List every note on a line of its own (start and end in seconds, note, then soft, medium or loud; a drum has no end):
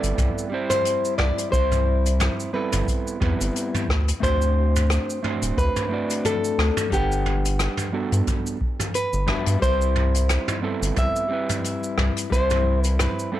0.00 0.13 G1 medium
0.00 0.48 G3 medium
0.00 0.48 B3 medium
0.00 0.48 C4 medium
0.00 0.48 E4 medium
0.00 0.49 A4 medium
0.00 0.66 D5 loud
0.00 closed hi-hat medium
0.00 cabasa medium
0.18 0.30 C2 loud
0.18 kick loud
0.18 closed hi-hat soft
0.18 mid tom medium
0.18 cabasa medium
0.38 cabasa soft
0.50 1.48 G3 medium
0.50 1.49 C4 medium
0.50 1.50 E4 medium
0.54 1.51 C5 medium
0.70 1.16 C5 loud
0.70 closed hi-hat medium
0.70 mid tom medium
0.70 cabasa medium
0.85 closed hi-hat medium
0.85 cabasa medium
1.05 cabasa medium
1.18 1.32 C2 medium
1.18 1.52 D5 medium
1.18 cross-stick medium
1.18 mid tom medium
1.38 closed hi-hat medium
1.38 cabasa medium
1.50 2.29 C2 medium
1.50 2.49 G3 medium
1.50 2.50 C4 medium
1.50 2.51 E4 medium
1.50 2.50 C5 loud
1.50 kick loud
1.50 closed hi-hat medium
1.50 cabasa medium
1.55 2.52 C5 medium
1.72 mid tom medium
1.72 cabasa soft
2.06 closed hi-hat medium
2.06 cabasa medium
2.20 cross-stick medium
2.20 closed hi-hat medium
2.20 mid tom medium
2.20 cabasa medium
2.40 cabasa medium
2.53 3.17 G3 medium
2.53 3.18 B3 medium
2.53 3.18 C4 medium
2.53 3.18 E4 medium
2.53 3.19 A4 medium
2.53 3.85 B4 medium
2.72 2.83 G1 medium
2.72 closed hi-hat medium
2.72 mid tom medium
2.72 cabasa medium
2.88 kick loud
2.88 closed hi-hat medium
2.88 cabasa medium
3.07 cabasa soft
3.20 3.34 E2 loud
3.20 3.87 G3 medium
3.20 3.87 B3 medium
3.20 3.87 C4 medium
3.20 3.87 E4 medium
3.20 3.88 B4 loud
3.20 kick loud
3.20 mid tom medium
3.40 3.50 G1 loud
3.40 closed hi-hat medium
3.40 cabasa medium
3.56 closed hi-hat medium
3.56 cabasa medium
3.74 mid tom medium
3.74 cabasa medium
3.89 4.12 D2 medium
3.89 kick medium
3.89 cross-stick medium
4.08 closed hi-hat medium
4.08 cabasa medium
4.20 4.98 D2 loud
4.20 5.19 A3 medium
4.20 5.20 C4 medium
4.20 5.20 D4 medium
4.20 5.21 F#4 medium
4.20 5.58 C5 loud
4.20 kick loud
4.20 closed hi-hat medium
4.20 mid tom medium
4.20 cabasa medium
4.24 5.21 C5 loud
4.42 cabasa soft
4.76 closed hi-hat medium
4.76 mid tom medium
4.76 cabasa medium
4.90 cross-stick medium
4.90 closed hi-hat medium
4.90 cabasa medium
5.10 cabasa medium
5.23 5.87 A3 medium
5.23 5.87 C4 medium
5.23 5.88 D4 medium
5.23 5.88 F#4 medium
5.23 5.88 C5 medium
5.23 mid tom medium
5.42 5.52 D1 medium
5.42 closed hi-hat medium
5.42 cabasa medium
5.57 5.70 D2 loud
5.57 6.27 B4 medium
5.57 kick loud
5.57 closed hi-hat medium
5.57 cabasa medium
5.76 mid tom medium
5.76 cabasa soft
5.89 6.87 A3 medium
5.89 6.88 C4 medium
5.89 6.89 D4 medium
5.89 6.89 F#4 medium
5.93 6.90 D5 medium
6.10 closed hi-hat medium
6.10 cabasa medium
6.25 6.89 A4 medium
6.25 closed hi-hat medium
6.25 mid tom medium
6.25 cabasa medium
6.44 cabasa medium
6.58 6.71 D2 medium
6.58 cross-stick medium
6.77 closed hi-hat medium
6.77 mid tom medium
6.77 cabasa medium
6.90 7.68 G1 loud
6.90 7.89 G3 medium
6.90 6.94 B3 medium
6.90 7.90 D4 medium
6.90 7.90 G4 medium
6.90 7.90 F#5 medium
6.90 kick loud
6.90 closed hi-hat medium
6.90 cabasa medium
6.94 7.91 B4 medium
7.12 cabasa soft
7.26 mid tom medium
7.45 closed hi-hat medium
7.45 cabasa medium
7.59 cross-stick medium
7.59 closed hi-hat medium
7.59 cabasa medium
7.77 mid tom medium
7.77 cabasa soft
7.92 8.57 G3 medium
7.92 8.57 B3 medium
7.92 8.57 D4 medium
7.92 8.58 F#4 medium
7.92 8.58 A4 medium
8.12 8.22 G2 medium
8.12 closed hi-hat medium
8.12 cabasa medium
8.27 kick loud
8.27 closed hi-hat medium
8.27 mid tom medium
8.27 cabasa medium
8.46 cabasa medium
8.61 kick loud
8.80 closed hi-hat medium
8.80 mid tom medium
8.80 cabasa medium
8.94 9.62 B4 medium
8.94 closed hi-hat medium
8.94 cabasa medium
9.13 9.34 G1 medium
9.13 cabasa soft
9.27 9.58 G3 medium
9.27 9.58 B3 medium
9.27 9.58 D4 medium
9.27 9.58 F#4 medium
9.27 9.59 E5 loud
9.27 kick medium
9.27 cross-stick medium
9.27 mid tom medium
9.46 9.57 G2 loud
9.46 closed hi-hat medium
9.46 cabasa medium
9.59 10.38 C2 loud
9.59 10.58 G3 medium
9.59 10.59 C4 medium
9.59 10.60 E4 medium
9.59 10.59 C5 loud
9.59 kick loud
9.59 closed hi-hat medium
9.59 cabasa medium
9.64 10.60 C5 medium
9.81 cabasa soft
9.96 mid tom medium
10.14 closed hi-hat medium
10.14 cabasa medium
10.29 cross-stick medium
10.29 closed hi-hat medium
10.29 cabasa medium
10.48 mid tom medium
10.48 cabasa soft
10.62 11.26 G3 medium
10.62 11.27 B3 medium
10.62 11.27 C4 medium
10.62 11.27 E4 medium
10.62 11.27 A4 medium
10.82 10.91 G1 medium
10.82 closed hi-hat medium
10.82 cabasa medium
10.96 11.09 C2 loud
10.96 12.32 E5 loud
10.96 kick loud
10.96 closed hi-hat medium
10.96 mid tom medium
10.96 cabasa medium
11.16 cabasa medium
11.28 12.27 G3 medium
11.28 11.32 B3 medium
11.28 12.28 C4 medium
11.28 12.29 E4 medium
11.33 12.29 B4 medium
11.49 closed hi-hat medium
11.49 mid tom medium
11.49 cabasa medium
11.64 closed hi-hat medium
11.64 cabasa medium
11.83 cabasa medium
11.98 12.10 C2 loud
11.98 cross-stick medium
11.98 mid tom medium
12.17 closed hi-hat medium
12.17 cabasa medium
12.30 13.07 C2 medium
12.30 13.28 G3 medium
12.30 13.29 C4 medium
12.30 13.30 E4 medium
12.30 12.81 C5 medium
12.30 kick loud
12.30 closed hi-hat medium
12.30 cabasa medium
12.34 13.31 C5 loud
12.50 mid tom medium
12.50 cabasa soft
12.81 12.99 B4 medium
12.81 closed hi-hat medium
12.81 cabasa medium
12.99 13.40 B4 medium
12.99 cross-stick medium
12.99 closed hi-hat medium
12.99 mid tom medium
12.99 cabasa medium
13.19 cabasa soft
13.32 13.40 G3 medium
13.32 13.40 B3 medium
13.32 13.40 C4 medium
13.32 13.40 E4 medium
13.32 13.40 A4 medium